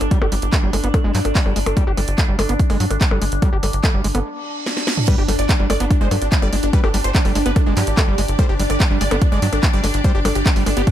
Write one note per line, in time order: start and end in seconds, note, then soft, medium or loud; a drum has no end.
0.00 0.08 G1 medium
0.00 5.07 D4 medium
0.00 closed hi-hat medium
0.00 percussion blips soft
0.11 0.19 G3 loud
0.11 kick loud
0.11 closed hi-hat medium
0.22 0.29 G1 medium
0.22 0.27 G4 medium
0.22 percussion blips medium
0.32 0.39 G1 loud
0.32 0.35 G3 loud
0.32 open hi-hat loud
0.42 0.50 G1 medium
0.42 closed hi-hat medium
0.53 kick loud
0.53 clap loud
0.53 closed hi-hat medium
0.53 percussion blips soft
0.63 0.70 G1 medium
0.63 0.71 G3 medium
0.73 0.81 G1 loud
0.73 0.76 G#3 loud
0.73 open hi-hat loud
0.73 percussion blips soft
0.84 0.91 G1 medium
0.84 0.89 B3 medium
0.84 closed hi-hat medium
0.94 kick loud
0.94 closed hi-hat medium
0.94 percussion blips medium
1.04 1.12 G1 medium
1.04 1.12 G#3 loud
1.15 1.22 G2 loud
1.15 1.20 F#3 medium
1.15 clap medium
1.15 open hi-hat loud
1.25 1.32 G#1 medium
1.25 closed hi-hat medium
1.25 percussion blips soft
1.35 kick loud
1.35 clap loud
1.35 open hi-hat medium
1.46 1.53 G1 medium
1.46 1.54 G3 medium
1.46 percussion blips soft
1.56 1.63 G1 loud
1.56 1.59 G#3 loud
1.56 open hi-hat loud
1.66 1.74 G1 medium
1.66 closed hi-hat medium
1.66 percussion blips medium
1.77 1.85 G3 loud
1.77 kick loud
1.77 closed hi-hat medium
1.87 1.94 G1 medium
1.87 1.92 G4 medium
1.97 2.05 G1 loud
1.97 2.01 G3 loud
1.97 open hi-hat loud
1.97 percussion blips soft
2.08 2.15 G1 medium
2.08 closed hi-hat medium
2.18 kick loud
2.18 clap loud
2.18 closed hi-hat medium
2.18 percussion blips soft
2.28 2.36 G1 medium
2.28 2.36 G3 medium
2.39 2.46 G1 medium
2.39 2.42 G#3 loud
2.39 open hi-hat loud
2.39 percussion blips medium
2.49 2.56 G1 medium
2.49 2.54 B3 medium
2.49 closed hi-hat medium
2.60 kick loud
2.60 closed hi-hat medium
2.70 2.77 G1 medium
2.70 2.78 G#3 loud
2.70 open hi-hat medium
2.70 percussion blips soft
2.80 2.88 G2 loud
2.80 2.85 F#3 medium
2.80 open hi-hat loud
2.91 2.98 G#1 loud
2.91 closed hi-hat medium
2.91 percussion blips soft
3.01 kick loud
3.01 clap loud
3.01 closed hi-hat medium
3.11 3.19 G1 medium
3.11 3.19 G3 medium
3.11 percussion blips medium
3.22 3.29 G1 loud
3.22 3.25 G#3 loud
3.22 open hi-hat loud
3.32 3.39 G1 medium
3.32 closed hi-hat medium
3.42 3.50 G3 loud
3.42 kick loud
3.42 closed hi-hat medium
3.42 percussion blips soft
3.53 3.60 G1 medium
3.53 3.58 G4 medium
3.63 3.70 G1 loud
3.63 3.66 G3 loud
3.63 open hi-hat loud
3.63 percussion blips soft
3.73 3.81 G1 medium
3.73 closed hi-hat medium
3.84 kick loud
3.84 clap loud
3.84 closed hi-hat medium
3.84 percussion blips medium
3.94 4.01 G1 medium
3.94 4.02 G3 medium
4.04 4.12 G1 medium
4.04 4.07 G#3 loud
4.04 open hi-hat loud
4.15 4.22 G1 medium
4.15 4.20 B3 medium
4.15 closed hi-hat medium
4.15 percussion blips soft
4.25 reverse cymbal medium
4.66 snare medium
4.77 snare medium
4.87 snare medium
4.97 mid tom medium
5.08 5.16 G3 loud
5.08 10.91 D4 medium
5.08 5.13 B4 loud
5.08 kick loud
5.08 closed hi-hat medium
5.08 crash loud
5.08 sub drop medium
5.18 5.25 G1 medium
5.18 5.24 D4 medium
5.18 5.23 G4 medium
5.28 5.36 G1 loud
5.28 5.32 G3 loud
5.28 5.34 D4 medium
5.28 open hi-hat loud
5.28 percussion blips soft
5.39 5.46 G1 medium
5.39 5.44 D5 medium
5.39 closed hi-hat medium
5.49 5.55 D4 medium
5.49 kick loud
5.49 clap loud
5.49 closed hi-hat medium
5.59 5.67 G1 medium
5.59 5.67 G3 medium
5.59 5.65 D4 medium
5.70 5.77 G1 loud
5.70 5.73 G#3 loud
5.70 5.75 D5 loud
5.70 open hi-hat loud
5.70 percussion blips medium
5.80 5.88 G1 medium
5.80 5.85 B3 medium
5.80 5.86 D4 medium
5.80 10.91 G4 medium
5.80 closed hi-hat medium
5.90 5.96 D4 medium
5.90 kick loud
5.90 closed hi-hat medium
6.01 6.08 G1 medium
6.01 6.09 G#3 loud
6.01 6.06 C5 medium
6.11 6.19 G2 loud
6.11 6.16 F#3 medium
6.11 6.17 D4 medium
6.11 open hi-hat loud
6.11 percussion blips soft
6.22 6.29 G#1 medium
6.22 6.27 D4 medium
6.22 closed hi-hat medium
6.32 6.37 D4 medium
6.32 kick loud
6.32 clap loud
6.32 closed hi-hat medium
6.38 6.50 G1 medium
6.38 6.50 G3 medium
6.38 10.91 D5 medium
6.38 6.48 D5 loud
6.38 percussion blips soft
6.53 6.60 G1 medium
6.53 6.56 G#3 loud
6.53 6.58 D4 medium
6.53 open hi-hat loud
6.63 6.70 G1 medium
6.63 6.68 D4 medium
6.63 closed hi-hat medium
6.73 6.81 G3 loud
6.73 6.79 B4 medium
6.73 kick loud
6.73 closed hi-hat medium
6.84 6.91 G1 medium
6.84 6.89 D4 medium
6.84 6.89 G4 medium
6.84 percussion blips medium
6.94 7.01 G1 loud
6.94 6.97 G3 loud
6.94 6.99 D4 medium
6.94 open hi-hat loud
7.04 7.12 G1 loud
7.04 7.10 C5 medium
7.04 closed hi-hat medium
7.15 7.20 D4 medium
7.15 kick loud
7.15 clap loud
7.15 closed hi-hat medium
7.25 7.32 G1 medium
7.25 7.33 G3 medium
7.25 7.30 D4 medium
7.25 open hi-hat medium
7.25 percussion blips soft
7.35 7.43 G1 loud
7.35 7.38 G#3 loud
7.35 7.41 D4 medium
7.35 open hi-hat loud
7.46 7.53 G1 medium
7.46 7.51 B3 medium
7.46 7.51 B4 medium
7.46 closed hi-hat medium
7.56 7.61 D4 medium
7.56 kick loud
7.56 closed hi-hat medium
7.56 percussion blips soft
7.66 7.74 G1 medium
7.66 7.74 G#3 loud
7.66 7.72 D4 medium
7.77 7.84 G2 loud
7.77 7.82 F#3 medium
7.77 8.31 G4 loud
7.77 clap medium
7.77 open hi-hat loud
7.87 7.94 G#1 loud
7.87 closed hi-hat medium
7.97 kick loud
7.97 clap loud
7.97 closed hi-hat medium
7.97 percussion blips medium
8.08 8.15 G1 medium
8.08 8.16 G3 medium
8.18 8.25 G1 medium
8.18 8.21 G#3 loud
8.18 open hi-hat loud
8.28 8.36 G1 medium
8.28 closed hi-hat medium
8.39 8.47 G3 loud
8.39 8.44 C5 loud
8.39 kick loud
8.39 closed hi-hat medium
8.39 percussion blips soft
8.49 8.56 G1 medium
8.49 8.55 D4 medium
8.49 8.54 G4 medium
8.59 8.67 G1 loud
8.59 8.63 G3 loud
8.59 8.65 D4 medium
8.59 open hi-hat loud
8.70 8.77 G1 medium
8.70 8.75 D5 medium
8.70 closed hi-hat medium
8.70 percussion blips soft
8.80 8.86 D4 medium
8.80 kick loud
8.80 clap loud
8.80 closed hi-hat medium
8.91 8.98 G1 medium
8.91 8.98 G3 medium
8.91 8.96 D4 medium
9.01 9.08 G1 loud
9.01 9.04 G#3 loud
9.01 9.06 D5 loud
9.01 open hi-hat loud
9.11 9.19 G1 medium
9.11 9.16 B3 medium
9.11 9.17 D4 medium
9.11 closed hi-hat medium
9.11 percussion blips medium
9.22 9.27 D4 medium
9.22 kick loud
9.22 closed hi-hat medium
9.32 9.39 G1 medium
9.32 9.40 G#3 loud
9.32 9.37 D5 medium
9.42 9.50 G2 loud
9.42 9.47 F#3 medium
9.42 9.48 D4 medium
9.42 open hi-hat loud
9.53 9.60 G#1 medium
9.53 9.58 D4 medium
9.53 closed hi-hat medium
9.53 percussion blips soft
9.63 9.68 D4 medium
9.63 kick loud
9.63 clap loud
9.63 closed hi-hat medium
9.73 9.81 G1 medium
9.73 9.81 G3 medium
9.73 9.79 D5 medium
9.84 9.91 G1 medium
9.84 9.87 G#3 loud
9.84 9.89 D4 medium
9.84 open hi-hat loud
9.84 percussion blips soft
9.94 10.01 G1 medium
9.94 9.99 D4 medium
9.94 closed hi-hat medium
10.04 10.12 G3 loud
10.04 10.10 C5 medium
10.04 kick loud
10.04 closed hi-hat medium
10.15 10.22 G1 medium
10.15 10.20 D4 medium
10.15 10.20 G4 medium
10.25 10.32 G1 loud
10.25 10.28 G3 loud
10.25 10.31 D4 medium
10.25 open hi-hat loud
10.25 percussion blips medium
10.35 10.43 G1 medium
10.35 10.41 G4 medium
10.35 closed hi-hat medium
10.46 10.51 D4 medium
10.46 kick loud
10.46 clap loud
10.46 closed hi-hat medium
10.56 10.63 G1 medium
10.56 10.64 G3 medium
10.56 10.62 D4 medium
10.56 open hi-hat medium
10.66 10.74 G1 loud
10.66 10.69 G#3 loud
10.66 10.72 D4 medium
10.66 open hi-hat loud
10.66 percussion blips soft
10.77 10.84 G1 medium
10.77 10.82 B3 medium
10.77 10.82 G4 medium
10.77 closed hi-hat medium
10.87 10.91 D4 medium
10.87 kick loud
10.87 closed hi-hat medium